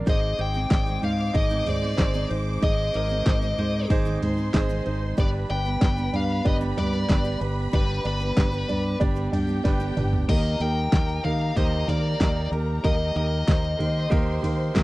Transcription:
0.06 G#1 G#2 G#3 C4 D#4 G#4 C5 D#5 D6, kick, ride
0.38 G#1 D#4 G#4 C5 G5, ride
0.54 G#3 C4 D#4 G#4
0.70 G#1 D#4 G#4 D5, kick, snare, clap, ride
0.86 G#3 C4 D#4 G#4, ride
1.02 G#2 D#4 G#4 C5 F5, floor tom, ride
1.33 G#1 D#4 G#4 D#5, kick, ride
1.50 G#2 D#3 G#3 C4 D#4 G#4
1.65 G#2 D#4 G#4 C5 D5, floor tom, ride
1.82 G#3 C4 D#4 G#4
1.97 G#1 D#4 G#4 C5, kick, snare, clap, ride
2.13 G#2 D#3 G#3 C4 D#4 G#4
2.29 G#1 D#4 G#4 C5, ride
2.61 G#1 G#2 G#3 C4 D#4 G#4 D#5, kick, ride
2.94 G#1 D#4 G#4 A#4 D#5, ride
3.09 G#3 C4 D#4 G#4
3.26 G#1 D#4 G#4 C5, kick, snare, clap, ride
3.41 G#3 C4 D#4 G#4, ride
3.58 G#2 D#4 G#4 C5, floor tom, ride
3.90 G#1 D#4 G#4 C5, kick, ride
4.05 G#2 D#3 G#3 C4 D#4 G#4
4.22 G#2 D#4 G#4 C5 C6, floor tom, ride
4.37 G#3 C4 D#4 G#4
4.54 G#1 D#4 G#4 C5, kick, snare, clap, ride
4.69 G#2 D#3 G#3 C4 D#4 G#4
4.86 G#1 D#4 G#4 C5, ride
5.17 G1 G2 G3 B3 D4 G4 B4 D5 B5, kick, ride
5.50 G1 D4 G4 B4 G5, ride
5.65 G3 B3 D4 G4
5.81 G1 D4 G4 B4, kick, snare, clap, ride
5.97 G3 B3 D4 G4, ride
6.13 G2 D4 G4 B4 F5, floor tom, ride
6.45 G1 D4 G4 B4 D#5, kick, ride
6.61 G2 D3 G3 B3 D4 G4
6.77 G2 D4 G4 B4 D5, floor tom, ride
6.92 G3 B3 D4 G4
7.09 G1 D4 G4 B4, kick, snare, clap, ride
7.24 G2 D3 G3 B3 D4 G4
7.41 G1 D4 G4 B4, ride
7.72 G1 G2 G3 B3 D4 G4 B4 D5, kick, ride
8.04 G1 D4 G4 B4 D5, ride
8.20 G3 B3 D4 G4, ride
8.36 G1 D4 G4 B4, kick, snare, clap, ride
8.52 G3 B3 D4 G4, ride
8.68 G2 D4 G4 D5, floor tom, ride
9.00 G1 D4 G4 D5, kick, ride
9.15 G2 D3 G3 B3 D4 G4
9.32 G2 D4 G4 D5 G5, floor tom, ride
9.47 G3 B3 D4 G4
9.64 G1 D4 G4 B4, kick, snare, ride
9.80 G2 D3 G3 B3 D4 G4
9.97 G1 D4 G4 B4, mid tom, ride
10.13 floor tom
10.29 D#2 D#3 A#3 D#4 G4 A#4 D#5 A#5, kick, crash, ride
10.60 D#2 A#3 D#4 G4 A#4 G5, ride
10.92 D#2 A#3 D#4 G4 A#4, kick, snare, clap, ride
11.09 ride
11.24 D#3 A#3 D#4 G4 A#4 F5, floor tom, ride
11.56 D#2 A#3 D#4 G4 C5 D#5, kick, ride
11.88 D#3 A#3 D#4 G4 A#4 D5, floor tom, ride
12.20 D#2 A#3 D#4 G4 A#4, kick, snare, clap, ride
12.52 D#2 A#3 D#4 G4 A#4, ride
12.84 D#2 D#3 A#3 D#4 G4 A#4 D#5, kick, ride
13.15 D#2 A#3 D#4 G4 A#4 D#5, ride
13.47 D#2 A#3 D#4 G4 C5, kick, snare, clap, ride
13.65 ride
13.79 D#3 A#3 D#4 G4 A#4 C5 C6, floor tom, ride
14.10 D#2 A#3 D#4 G4 A#4, kick, ride
14.42 D#3 A#3 D#4 G4 A#4, floor tom, ride
14.74 D#2 A#3 D#4 G4 A#4, kick, snare, clap, ride

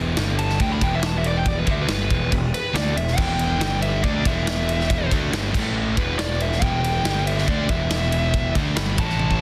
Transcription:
Already playing: E1 E2 B2 E3
0.16 G1 G2 D3 G3, snare, ride
0.39 A5, ride
0.50 snare
0.60 D2 D3 A3 D4 G5, kick, ride
0.72 B5
0.81 E1 E2 B2 E3 G5, kick, ride
0.95 E5
1.02 A5, snare, ride
1.18 E5
1.24 D5, ride
1.37 G5
1.45 D5, kick, ride
1.59 B4
1.66 D2 D3 A3 D4, kick, ride
1.71 E5
1.82 B4
1.88 G1 G2 D3 G3 B4, snare, ride
2.10 E1 E2 B2 E3, kick, ride
2.31 E1 E2 B2, kick, ride
2.54 B4, ride
2.73 D2 D3 A3 D4 D5, snare, ride
2.96 E1 E2 B2 E5, ride
3.08 snare
3.16 E1 E2 B2 E3 G5, kick, crash
3.39 ride
3.58 G1 G2 D3 G3, snare, ride
3.82 E5, ride
4.03 D2 D3 A3 D4 D5, kick, ride
4.24 E1 E2 B2 E3 E5, kick, ride
4.47 snare, ride
4.69 ride
4.80 snare
4.90 kick, ride
5.10 D2 D3 A3 D4, kick, ride
5.31 G1 G2 D3 G3, snare, ride
5.52 A1 A2 E3 A3, kick, crash
5.96 E1 E2 B2 E3 B4, kick, ride
6.19 D5, snare, ride
6.40 E5, ride
6.52 snare
6.60 E1 E2 B2 E3 G5, kick, ride
6.84 ride
7.04 G1 G2 D3 G3, snare, ride
7.27 E5, ride
7.38 snare
7.47 D2 D3 A3 D4 D5, kick, ride
7.69 E1 E2 B2 E3 E5, kick, ride
7.90 snare, ride
8.12 ride
8.34 kick, ride
8.55 D2 D3 A3 D4, kick, ride
8.76 G1 G2 D3 G3 B5, snare, ride
8.98 A1 A2 E3 A3 A5, kick, ride
9.10 snare
9.19 high tom
9.31 kick

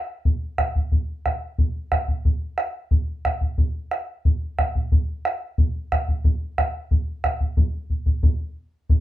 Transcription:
0.25 bombo low
0.58 bombo rim, bombo low
0.76 bombo low
0.92 bombo low
1.26 bombo rim, bombo low
1.58 bombo low
1.92 bombo rim, bombo low
2.08 bombo low
2.25 bombo low
2.58 bombo rim
2.91 bombo low
3.25 bombo rim, bombo low
3.41 bombo low
3.58 bombo low
3.91 bombo rim
4.25 bombo low
4.59 bombo rim, bombo low
4.75 bombo low
4.92 bombo low
5.25 bombo rim
5.58 bombo low
5.92 bombo rim, bombo low
6.08 bombo low
6.24 bombo low
6.58 bombo rim, bombo low
6.91 bombo low
7.24 bombo rim, bombo low
7.40 bombo low
7.57 bombo low
7.90 bombo low
8.06 bombo low
8.23 bombo low
8.90 bombo low

